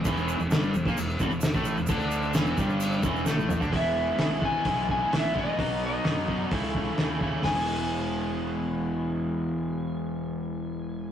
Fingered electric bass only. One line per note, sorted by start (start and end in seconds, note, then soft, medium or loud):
0.05 0.37 E1 loud
0.39 0.49 E1 medium
0.50 0.72 G1 loud
0.74 0.84 E1 medium
0.85 0.96 A#1 medium
0.97 1.18 E1 medium
1.20 1.30 E1 loud
1.31 1.52 E1 medium
1.54 1.75 A1 loud
1.77 1.88 E1 medium
1.89 2.32 D2 medium
2.34 2.56 E1 loud
2.58 3.00 G1 medium
3.03 3.24 E1 loud
3.27 3.59 A1 medium
3.60 3.71 D2 loud
3.72 4.11 E1 loud
4.18 4.57 G#1 loud
4.65 5.03 B1 medium
5.12 5.50 A1 medium
5.58 5.97 B1 medium
6.05 6.43 F#2 medium
6.52 6.90 C#2 medium
6.99 7.37 D#2 medium
7.45 11.12 E1 medium